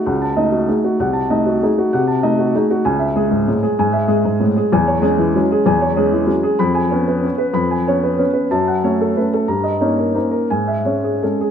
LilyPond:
<<
  \new Staff \with { instrumentName = "Upright piano" } { \time 3/4 \key cis \minor \tempo 4 = 190 <fis' fis''>8 a''8 dis''8 fis'8 gis'8 fis'8 | ges''8 a''8 ees''8 ges'8 gis'8 ges'8 | ges''8 a''8 ees''8 ges'8 gis'8 ges'8 | gis''8 e''8 gis'8 gis,8 a,8 gis'8 |
gis''8 e''8 gis'8 gis,8 a,8 gis'8 | gis''8 cis''8 gis'8 e8 fis8 gis'8 | gis''8 cis''8 gis'8 e8 fis8 gis'8 | b''8 gis''8 cis''8 b'8 cis''8 b'8 |
b''8 gis''8 cis''8 b'8 cis''8 b'8 | a''8 fis''8 cis''8 a'8 b'8 a'8 | ais''8 dis''8 cis''8 ais'8 bis'8 ais'8 | gis''8 e''8 cis''8 gis'8 a'8 gis'8 | }
  \new Staff \with { instrumentName = "Upright piano" } { \time 3/4 \key cis \minor cis,4 <a dis'>4 <a dis'>4 | c,4 <a ees'>4 <a ees'>4 | c4 <a ees'>4 <a ees'>4 | cis,4 gis4 gis4 |
gis,4 gis4 gis4 | e,4 <gis cis'>4 <gis cis'>4 | e,4 <gis cis'>4 <gis cis'>4 | eis,4 <b cis'>4 <b cis'>4 |
eis,4 <b cis'>4 <b cis'>4 | fis,4 <a cis'>4 <a cis'>4 | g,4 <ais cis' dis'>4 <ais cis' dis'>4 | gis,4 <gis cis'>4 <gis cis'>4 | }
>>